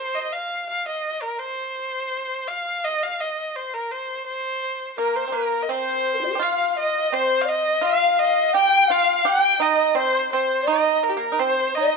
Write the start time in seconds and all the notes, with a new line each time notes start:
Already playing: C5
0.14 C5 D#5
0.23 D#5
0.32 F5
0.69 F5
0.87 D#5
1.22 A#4
1.39 C5
2.48 F5
2.84 D#5
3.03 F5
3.20 D#5
3.56 C5
3.73 A#4
3.92 C5
4.26 C5
4.97 A#3 A#4
5.16 C5
5.28 C4
5.32 A#3 A#4
5.62 D#5
5.69 C4 C5
6.13 A#4
6.17 D#4 C5
6.23 F4 D#5
6.27 G4 A#4
6.35 G4 C5
6.39 F4 D#5 F5
6.76 D#5
7.11 C4 C5
7.41 D#5 F5
7.49 D#5
7.81 F4 F5
8.19 D#5
8.53 G4 G5
8.87 F4 F5
8.91 F5
9.25 G4 G5
9.59 D#4 D#5
9.95 C4 C5
10.32 C4 C5
10.67 D#4 D#5
11.03 A#4
11.09 G4
11.17 A#3 A#4
11.32 D#4
11.39 C4 C5
11.75 D#4 D#5